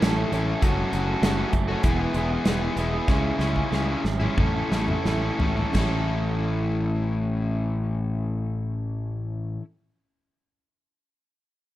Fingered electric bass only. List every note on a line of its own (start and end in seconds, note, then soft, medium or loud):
0.02 0.23 A1 medium
0.32 0.53 A1 medium
0.63 0.84 F#1 medium
0.93 1.14 F#1 medium
1.22 1.44 F#1 medium
1.53 1.75 F#1 medium
1.84 2.05 E1 medium
2.14 2.36 E1 medium
2.45 2.67 E1 medium
2.76 2.99 E1 medium
3.08 3.31 C#2 medium
3.39 3.62 C#2 medium
3.72 3.95 C#2 medium
4.04 4.28 G#1 medium
4.38 4.61 A1 medium
4.71 4.95 A1 medium
5.05 5.30 A1 medium
5.39 5.64 A1 medium
5.75 9.57 A1 medium